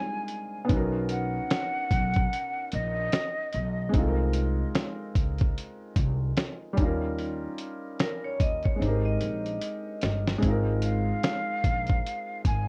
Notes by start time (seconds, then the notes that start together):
Already playing: G3 G#3 C4 D#4 F4 G#5
0.28 closed hi-hat
0.65 B3 C#4
0.69 B1 D#4, kick, closed hi-hat
0.74 F#4 A#4
1.09 F#5, closed hi-hat
1.51 snare, closed hi-hat
1.91 B1, kick, closed hi-hat
2.14 kick, closed hi-hat
2.33 closed hi-hat
2.72 A#1 D#5, closed hi-hat
3.12 snare, closed hi-hat
3.53 B1, closed hi-hat
3.89 G#3 C4
3.94 C2 D#4, kick, closed hi-hat
3.98 F4 A4
4.08 A#4
4.33 closed hi-hat
4.75 snare, closed hi-hat
5.15 C#2, kick, closed hi-hat
5.38 kick, closed hi-hat
5.58 closed hi-hat
5.96 C2, kick, closed hi-hat
6.37 snare, closed hi-hat
6.73 G3 C#4
6.77 D#2 D#4, kick, closed hi-hat
6.82 F4 A#4
7.18 closed hi-hat
7.58 closed hi-hat
7.99 A#4, snare, closed hi-hat
8.24 C#5
8.40 D#2 D#5, kick, closed hi-hat
8.62 C#5, kick, closed hi-hat
8.76 G#3 C4
8.81 G#1 D#4 G4 C5, closed hi-hat
8.88 A#4
9.05 D#5
9.20 A#1, closed hi-hat
9.45 closed hi-hat
9.61 closed hi-hat
10.01 G1, snare, closed hi-hat
10.27 snare
10.38 G#3 C4
10.42 G#1 D#4, kick, closed hi-hat
10.47 F4 A#4
10.82 F5, closed hi-hat
11.23 snare, closed hi-hat
11.64 A#1, kick, closed hi-hat
11.87 kick, closed hi-hat
12.06 closed hi-hat
12.45 G#1 G#5, kick, closed hi-hat